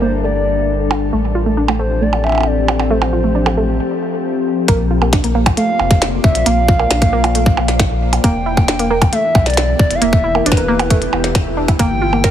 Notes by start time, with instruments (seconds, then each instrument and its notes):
Already playing: sub bass G1, ambient pad G3 D4 A4 A#4
0.02 synth pluck A#3, soft synth lead C5
0.24 synth pluck A3, soft synth lead D5
0.91 percussion blips
1.13 sub bass A1, ambient pad F3, synth pluck A3
1.27 ambient pad C4 G4
1.35 synth pluck F4
1.46 synth pluck A3
1.57 synth pluck D4
1.68 synth pluck A3, percussion blips
1.79 synth pluck A3, soft synth lead C5
2.02 synth pluck A3, soft synth lead D5
2.13 percussion blips
2.24 soft synth lead E5, percussion blips
2.27 percussion blips
2.29 percussion blips
2.32 percussion blips
2.35 percussion blips
2.38 percussion blips
2.41 percussion blips
2.43 soft synth lead D5, percussion blips
2.68 percussion blips
2.79 percussion blips
2.90 synth pluck A3, soft synth lead C5
3.02 percussion blips
3.13 synth pluck F4
3.24 synth pluck A3
3.35 synth pluck D4
3.46 synth pluck A3, percussion blips
3.57 synth pluck A3
4.68 sub bass A#1, ambient pad A#3, synth pluck A#3, kick, closed hi-hat
4.81 ambient pad C5
4.91 synth pluck F4, ambient pad F4
4.99 synth pluck A#3, ambient pad D5, percussion blips
5.13 synth pluck D4, kick, snare, closed hi-hat
5.24 synth pluck A#3, closed hi-hat
5.35 synth pluck A#3
5.46 kick, closed hi-hat, percussion blips
5.57 synth pluck A3, soft synth lead F5, closed hi-hat
5.79 sub bass F1, percussion blips
5.91 kick, snare, closed hi-hat
6.02 snare, closed hi-hat
6.24 sub bass F1, soft synth lead E5, kick
6.35 sub bass A#1, closed hi-hat
6.46 sub bass A#1, synth pluck A#3, soft synth lead F5, closed hi-hat
6.68 synth pluck F4, kick
6.79 synth pluck A#3, percussion blips
6.91 sub bass A#1, synth pluck D4, snare, closed hi-hat
7.02 synth pluck A#3, kick, closed hi-hat
7.13 synth pluck A#3
7.24 closed hi-hat, percussion blips
7.35 synth pluck A3, closed hi-hat
7.46 kick
7.57 sub bass A#1, percussion blips
7.68 snare, closed hi-hat
7.79 kick, snare, closed hi-hat
8.13 closed hi-hat, percussion blips
8.24 sub bass E1, ambient pad E3, synth pluck A#3, soft synth lead G5, kick, closed hi-hat
8.46 synth pluck E4
8.50 ambient pad B3
8.57 synth pluck A#3, kick, percussion blips
8.68 synth pluck D4, ambient pad E4, snare, closed hi-hat
8.79 synth pluck A#3, closed hi-hat
8.90 synth pluck A#3
9.01 ambient pad G4, kick, closed hi-hat, percussion blips
9.12 synth pluck A3, soft synth lead E5, closed hi-hat
9.35 sub bass B1, kick, percussion blips
9.46 soft synth lead D5, snare, closed hi-hat
9.50 closed hi-hat
9.54 snare, closed hi-hat
9.57 closed hi-hat
9.79 sub bass D1, soft synth lead D5, kick
9.91 sub bass E1, closed hi-hat
9.95 soft synth lead F5
10.01 sub bass E1, synth pluck A#3, soft synth lead E5, closed hi-hat
10.13 kick
10.24 synth pluck E4
10.35 synth pluck A#3, percussion blips
10.46 sub bass E1, synth pluck D4, soft synth lead B4, closed hi-hat
10.52 kick, snare
10.57 synth pluck A#3, closed hi-hat
10.68 synth pluck A#3
10.79 closed hi-hat, percussion blips
10.90 synth pluck A3, kick, closed hi-hat
11.02 closed hi-hat
11.13 sub bass E1, percussion blips
11.24 snare, closed hi-hat
11.35 kick, snare, closed hi-hat
11.57 synth pluck D4
11.68 synth pluck E4, kick, closed hi-hat, percussion blips
11.79 sub bass G1, ambient pad G3, synth pluck A#3, soft synth lead G5, kick, closed hi-hat
11.91 ambient pad A4
12.01 ambient pad D4, synth pluck F4
12.13 synth pluck A#3, percussion blips
12.24 synth pluck A#4, kick, snare, closed hi-hat